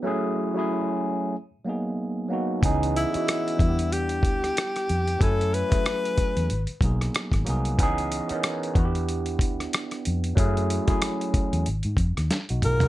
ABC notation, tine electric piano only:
X:1
M:4/4
L:1/16
Q:"Swing 16ths" 1/4=93
K:F#mix
V:1 name="Tine electric piano"
[F,=A,CEG]2 z [F,A,CEG]4- [F,A,CEG] z2 [F,^A,B,DG]3 z [F,A,B,DF]2 | [E,B,CDG]2 z [E,B,CFd]2 z [=G,B,=DEF=G]6 z4 | [F,=A,CEg]2 z [F,A,CEG]4- [F,A,CEG] z2 [F,^A,B,DG]3 z [F,A,B,DG]2 | [E,B,CDG]2 z [E,B,CDA]2 z [B,=DEF=G]6 z4 |
[F,=A,CEG]2 z [F,A,CEG]4- [F,A,CEG] z4 z [DF] [^EG] [F^A] |]